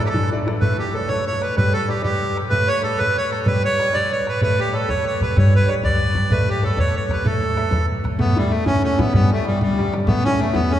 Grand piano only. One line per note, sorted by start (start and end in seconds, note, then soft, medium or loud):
0.00 0.25 E4 soft
0.00 0.25 A4 soft
0.00 0.25 D5 medium
0.14 0.46 E3 medium
0.32 0.45 E4 medium
0.32 0.46 A4 soft
0.32 0.47 D5 medium
0.47 0.59 E4 soft
0.47 0.59 A4 soft
0.47 0.60 D5 medium
0.62 1.54 A3 medium
0.94 1.09 A4 soft
0.94 1.10 B4 soft
0.94 1.10 C#5 soft
1.11 1.41 A4 soft
1.11 1.42 B4 soft
1.11 1.42 C#5 soft
1.57 2.49 G3 medium
1.88 2.01 G4 medium
1.88 2.01 B4 soft
1.88 2.02 D5 soft
2.02 2.35 G4 soft
2.02 2.35 B4 soft
2.02 2.35 D5 soft
2.50 3.43 A3 medium
2.83 2.97 A4 soft
2.83 2.97 B4 soft
2.83 2.98 C#5 medium
2.98 3.30 A4 soft
2.98 3.30 B4 soft
2.98 3.31 C#5 soft
3.46 4.38 G3 medium
3.79 3.91 G4 soft
3.79 3.91 B4 soft
3.79 3.92 D5 soft
3.92 4.25 G4 soft
3.92 4.25 B4 soft
3.92 4.25 D5 medium
4.42 5.34 A3 medium
4.73 4.87 A4 soft
4.73 4.88 B4 soft
4.73 4.89 C#5 soft
4.88 5.20 A4 soft
4.88 5.21 B4 soft
4.88 5.21 C#5 soft
5.37 6.28 G3 medium
5.68 5.82 G4 soft
5.68 5.82 B4 soft
5.68 5.83 D5 medium
5.84 6.15 G4 soft
5.84 6.15 B4 soft
5.84 6.15 D5 medium
6.31 7.23 A3 medium
6.63 6.77 A4 soft
6.63 6.77 B4 soft
6.63 6.77 C#5 medium
6.78 7.10 A4 soft
6.78 7.10 B4 soft
6.78 7.10 C#5 soft
7.25 8.17 A3 medium
7.57 7.71 A4 soft
7.57 7.71 B4 soft
7.57 7.72 E5 soft
7.72 8.04 A4 soft
7.72 8.04 B4 soft
7.72 8.04 E5 soft
8.19 8.50 A3 medium
8.36 8.51 E4 medium
8.52 8.66 A3 medium
8.66 8.83 E4 soft
8.85 8.99 A3 medium
8.99 9.13 E4 medium
9.13 9.29 G3 medium
9.31 9.43 G3 medium
9.44 9.60 G3 medium
9.62 9.77 G3 medium
9.78 9.93 G3 medium
9.94 10.08 G3 medium
10.07 10.38 A3 medium
10.26 10.40 E4 medium
10.39 10.54 A3 medium
10.53 10.71 E4 medium
10.72 10.79 A3 medium